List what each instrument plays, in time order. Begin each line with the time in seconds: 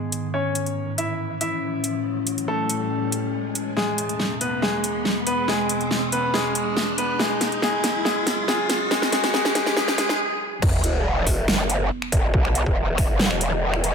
Already playing: ambient pad G#2 D#3 B3, grand piano G#3 G#4, riser
0.12 closed hi-hat
0.34 ambient pad A2 E3 C#4, grand piano C#4 C#5
0.55 closed hi-hat
0.66 closed hi-hat
0.98 grand piano E4 E5, closed hi-hat
1.41 grand piano E4 E5, closed hi-hat
1.84 closed hi-hat
2.27 closed hi-hat
2.38 closed hi-hat
2.48 grand piano A3 A4
2.69 closed hi-hat
3.12 closed hi-hat
3.55 closed hi-hat
3.77 ambient pad E2 B2 G#3, grand piano G#3 G#4, snare
3.98 closed hi-hat
4.09 closed hi-hat
4.20 snare
4.41 grand piano B3 B4, closed hi-hat
4.62 grand piano G#3 G#4, snare
4.84 closed hi-hat
5.05 snare
5.27 grand piano B3 B4, closed hi-hat
5.48 grand piano G#3 G#4, snare
5.69 closed hi-hat
5.81 closed hi-hat
5.91 snare
6.12 grand piano B3 B4, closed hi-hat
6.34 grand piano G#3 G#4, snare
6.55 closed hi-hat
6.77 snare
6.98 grand piano B3 B4, closed hi-hat
7.19 ambient pad F#2 C#3 F#3, grand piano G#3 G#4, snare
7.41 snare, closed hi-hat
7.52 closed hi-hat
7.62 grand piano G#3 G#4, snare
7.84 snare, closed hi-hat
8.05 grand piano G#3 G#4, snare
8.27 snare, closed hi-hat
8.48 grand piano G#3 G#4, snare
8.70 snare, closed hi-hat
8.91 grand piano G#3 G#4, snare
9.02 snare
9.12 grand piano G#3 G#4, snare, closed hi-hat
9.24 snare, closed hi-hat
9.34 grand piano G#3 G#4, snare
9.45 snare
9.55 grand piano G#3 G#4, snare, closed hi-hat
9.66 snare
9.77 grand piano G#3 G#4, snare
9.88 snare
9.98 grand piano G#3 G#4, snare, closed hi-hat
10.09 snare
10.62 wobble bass E1, ambient pad E3 B3 G#4, kick, crash, sub drop
10.84 wobble bass E1, closed hi-hat
11.27 kick, open hi-hat
11.48 wobble bass F#1, finger snap, snare
11.69 closed hi-hat
12.02 finger snap
12.12 wobble bass E1, kick, closed hi-hat
12.34 wobble bass B1, kick
12.45 finger snap
12.55 closed hi-hat
12.66 wobble bass E1, kick
12.98 finger snap, kick, open hi-hat
13.09 wobble bass F#1
13.19 snare
13.31 wobble bass E1, finger snap
13.41 closed hi-hat
13.74 finger snap
13.84 closed hi-hat